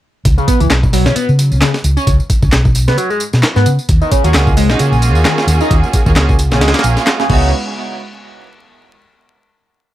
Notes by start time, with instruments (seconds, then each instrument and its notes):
0.25 fingered electric bass C#2, kick, closed hi-hat, tambourine
0.37 analog synth lead C#3, tambourine
0.47 analog synth lead B3, kick, closed hi-hat, tambourine
0.60 fingered electric bass C#2, analog synth lead E3, closed hi-hat, tambourine
0.70 fingered electric bass B1, snare, clap, closed hi-hat, tambourine
0.83 kick, tambourine
0.93 analog synth lead F#3, open hi-hat, tambourine
1.06 fingered electric bass C#3, analog synth lead C#4, snare, tambourine
1.15 analog synth lead B3, muted fingered electric bass stroke, closed hi-hat, tambourine
1.29 fingered electric bass C#3, tambourine
1.39 closed hi-hat, tambourine
1.52 fingered electric bass C#2, tambourine
1.61 analog synth lead C#3, snare, clap, closed hi-hat, tambourine
1.74 snare, tambourine
1.84 fingered electric bass C#2, closed hi-hat, tambourine
1.97 analog synth lead C#4, tambourine
2.07 fingered electric bass C#2, kick, closed hi-hat, tambourine
2.20 tambourine
2.30 kick, closed hi-hat, tambourine
2.42 fingered electric bass C#2, kick, tambourine
2.52 fingered electric bass B1, snare, clap, closed hi-hat, tambourine
2.65 kick, tambourine
2.75 closed hi-hat, tambourine
2.88 fingered electric bass C#3, analog synth lead B3, snare, tambourine
2.97 analog synth lead F#3, closed hi-hat, tambourine
3.10 analog synth lead G#3, tambourine
3.20 closed hi-hat, tambourine
3.33 fingered electric bass B2, snare, tambourine
3.43 snare, clap, closed hi-hat, tambourine
3.56 fingered electric bass G#2, analog synth lead B3, snare, tambourine
3.66 fingered electric bass C#3, closed hi-hat, tambourine
3.79 tambourine
3.89 fingered electric bass D#2, kick, closed hi-hat, tambourine
4.01 analog synth lead D#3, tambourine
4.11 analog synth lead C#3, kick, closed hi-hat, tambourine
4.24 fingered electric bass D#2, analog synth lead F#3, string section A#3 C#4 F4 F#4 G#4, closed hi-hat, tambourine
4.34 fingered electric bass C#2, string section A#3 C#4 F4 F#4 G#4, snare, clap, closed hi-hat, tambourine
4.47 kick, tambourine
4.57 analog synth lead G#3, open hi-hat, tambourine
4.70 fingered electric bass A#1, string section A#3 C#4 F4 F#4 G#4, analog synth lead D#4, snare, tambourine
4.79 analog synth lead C#3, closed hi-hat, tambourine
4.92 fingered electric bass A#1, tambourine
5.02 closed hi-hat, tambourine
5.15 fingered electric bass D#2, tambourine
5.25 analog synth lead D#3, snare, clap, closed hi-hat, tambourine
5.38 snare, tambourine
5.47 fingered electric bass D#2, closed hi-hat, tambourine
5.61 analog synth lead D#4, tambourine
5.70 fingered electric bass D#2, kick, closed hi-hat, tambourine
5.83 tambourine
5.93 kick, closed hi-hat, tambourine
6.06 fingered electric bass D#2, string section A#3 C#4 F4 F#4 G#4, kick, tambourine
6.16 fingered electric bass C#2, string section A#3 C#4 F4 F#4 G#4, snare, clap, closed hi-hat, tambourine
6.29 kick, tambourine
6.39 closed hi-hat, tambourine
6.51 fingered electric bass A#1, analog synth lead C#3, string section A#3 C#4 F4 F#4 G#4, snare, tambourine
6.61 fingered electric bass C#2, analog synth lead G#3, snare, closed hi-hat, tambourine
6.68 snare, closed hi-hat
6.74 analog synth lead A#3, snare, closed hi-hat, tambourine
6.79 snare, closed hi-hat
6.84 fingered electric bass A#1, closed hi-hat, tambourine
6.97 snare, tambourine
7.07 snare, clap, closed hi-hat, tambourine
7.20 analog synth lead C#3, snare, tambourine
7.29 fingered electric bass C#2, analog synth lead C#3, string section G#3 B3 D#4 E4 F#4, kick, crash